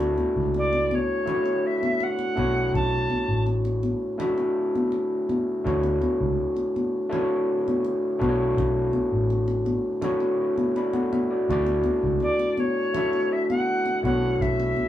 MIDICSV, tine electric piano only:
0, 0, Header, 1, 2, 480
1, 0, Start_track
1, 0, Key_signature, 2, "major"
1, 0, Tempo, 729040
1, 1801, Time_signature, 4, 2, 24, 8
1, 9800, End_track
2, 0, Start_track
2, 0, Title_t, "Tine electric piano"
2, 0, Program_c, 0, 4
2, 0, Note_on_c, 0, 57, 68
2, 0, Note_on_c, 0, 62, 71
2, 0, Note_on_c, 0, 64, 74
2, 0, Note_on_c, 0, 66, 65
2, 0, Note_on_c, 0, 74, 80
2, 6, Control_c, 0, 64, 127
2, 591, Note_off_c, 0, 57, 0
2, 594, Note_off_c, 0, 62, 0
2, 597, Note_off_c, 0, 64, 0
2, 598, Note_off_c, 0, 66, 0
2, 601, Note_off_c, 0, 74, 0
2, 825, Note_on_c, 0, 57, 63
2, 832, Note_on_c, 0, 62, 54
2, 840, Note_on_c, 0, 64, 64
2, 845, Note_on_c, 0, 66, 60
2, 850, Note_on_c, 0, 73, 76
2, 1542, Note_off_c, 0, 57, 0
2, 1546, Note_off_c, 0, 62, 0
2, 1550, Note_on_c, 0, 57, 66
2, 1552, Note_off_c, 0, 64, 0
2, 1554, Note_on_c, 0, 62, 59
2, 1560, Note_off_c, 0, 66, 0
2, 1560, Note_on_c, 0, 64, 64
2, 1566, Note_off_c, 0, 73, 0
2, 1568, Note_on_c, 0, 66, 57
2, 1570, Control_c, 0, 64, 0
2, 1574, Note_on_c, 0, 73, 76
2, 1699, Control_c, 0, 64, 127
2, 2324, Note_off_c, 0, 57, 0
2, 2326, Note_off_c, 0, 62, 0
2, 2329, Note_off_c, 0, 64, 0
2, 2333, Note_off_c, 0, 66, 0
2, 2336, Note_off_c, 0, 73, 0
2, 2752, Note_on_c, 0, 57, 73
2, 2757, Note_on_c, 0, 62, 72
2, 2763, Note_on_c, 0, 64, 73
2, 2769, Note_on_c, 0, 66, 67
2, 2771, Note_on_c, 0, 76, 78
2, 3479, Note_off_c, 0, 57, 0
2, 3481, Note_off_c, 0, 62, 0
2, 3485, Note_off_c, 0, 64, 0
2, 3487, Note_off_c, 0, 66, 0
2, 3488, Note_off_c, 0, 76, 0
2, 3714, Note_on_c, 0, 57, 72
2, 3720, Note_on_c, 0, 62, 71
2, 3726, Note_on_c, 0, 64, 62
2, 3732, Control_c, 0, 64, 0
2, 3732, Note_on_c, 0, 66, 66
2, 3736, Note_on_c, 0, 73, 84
2, 3825, Control_c, 0, 64, 127
2, 4440, Note_off_c, 0, 57, 0
2, 4443, Note_off_c, 0, 62, 0
2, 4446, Note_off_c, 0, 64, 0
2, 4449, Note_off_c, 0, 66, 0
2, 4451, Note_off_c, 0, 73, 0
2, 4669, Note_on_c, 0, 57, 81
2, 4674, Note_on_c, 0, 62, 75
2, 4682, Note_on_c, 0, 64, 73
2, 4689, Note_on_c, 0, 66, 68
2, 4692, Note_on_c, 0, 73, 85
2, 5383, Note_off_c, 0, 57, 0
2, 5388, Note_off_c, 0, 62, 0
2, 5391, Note_on_c, 0, 57, 77
2, 5395, Note_off_c, 0, 64, 0
2, 5395, Note_on_c, 0, 62, 75
2, 5401, Note_off_c, 0, 66, 0
2, 5403, Note_on_c, 0, 64, 69
2, 5407, Note_off_c, 0, 73, 0
2, 5408, Note_on_c, 0, 66, 72
2, 5412, Control_c, 0, 64, 0
2, 5415, Note_on_c, 0, 72, 73
2, 5452, Note_off_c, 0, 72, 0
2, 5457, Note_on_c, 0, 73, 88
2, 5509, Control_c, 0, 64, 127
2, 6165, Note_off_c, 0, 57, 0
2, 6167, Note_off_c, 0, 62, 0
2, 6171, Note_off_c, 0, 64, 0
2, 6173, Note_off_c, 0, 66, 0
2, 6198, Note_off_c, 0, 73, 0
2, 6591, Note_on_c, 0, 57, 76
2, 6597, Note_on_c, 0, 62, 66
2, 6601, Note_on_c, 0, 64, 73
2, 6609, Note_on_c, 0, 66, 75
2, 6611, Note_on_c, 0, 73, 82
2, 7086, Note_off_c, 0, 66, 0
2, 7087, Note_off_c, 0, 73, 0
2, 7089, Note_on_c, 0, 83, 52
2, 7092, Note_on_c, 0, 74, 49
2, 7199, Note_on_c, 0, 78, 51
2, 7200, Note_off_c, 0, 83, 0
2, 7201, Note_off_c, 0, 74, 0
2, 7203, Note_on_c, 0, 69, 45
2, 7315, Note_off_c, 0, 78, 0
2, 7317, Note_off_c, 0, 69, 0
2, 7319, Note_off_c, 0, 57, 0
2, 7322, Note_off_c, 0, 62, 0
2, 7323, Note_off_c, 0, 64, 0
2, 7325, Note_on_c, 0, 76, 61
2, 7437, Note_off_c, 0, 76, 0
2, 7445, Note_on_c, 0, 74, 54
2, 7451, Note_on_c, 0, 66, 46
2, 7564, Note_on_c, 0, 57, 75
2, 7567, Note_on_c, 0, 62, 66
2, 7568, Note_off_c, 0, 66, 0
2, 7569, Control_c, 0, 64, 0
2, 7573, Note_on_c, 0, 64, 67
2, 7575, Note_off_c, 0, 74, 0
2, 7576, Note_on_c, 0, 66, 66
2, 7583, Note_on_c, 0, 74, 82
2, 7675, Control_c, 0, 64, 127
2, 8284, Note_off_c, 0, 57, 0
2, 8286, Note_off_c, 0, 62, 0
2, 8289, Note_off_c, 0, 64, 0
2, 8290, Note_off_c, 0, 66, 0
2, 8294, Note_off_c, 0, 74, 0
2, 8518, Note_on_c, 0, 57, 69
2, 8525, Note_on_c, 0, 62, 55
2, 8533, Note_on_c, 0, 64, 64
2, 8534, Note_on_c, 0, 66, 60
2, 8542, Note_on_c, 0, 76, 76
2, 9228, Note_off_c, 0, 57, 0
2, 9236, Note_on_c, 0, 57, 65
2, 9239, Note_off_c, 0, 64, 0
2, 9242, Note_on_c, 0, 61, 48
2, 9243, Note_off_c, 0, 62, 0
2, 9245, Note_off_c, 0, 66, 0
2, 9247, Note_on_c, 0, 64, 61
2, 9249, Control_c, 0, 64, 0
2, 9251, Note_off_c, 0, 76, 0
2, 9253, Note_on_c, 0, 66, 55
2, 9260, Note_on_c, 0, 73, 74
2, 9284, Note_on_c, 0, 62, 60
2, 9285, Note_off_c, 0, 61, 0
2, 9381, Control_c, 0, 64, 127
2, 9800, Note_off_c, 0, 57, 0
2, 9800, Note_off_c, 0, 62, 0
2, 9800, Note_off_c, 0, 64, 0
2, 9800, Note_off_c, 0, 66, 0
2, 9800, Note_off_c, 0, 73, 0
2, 9800, End_track
0, 0, End_of_file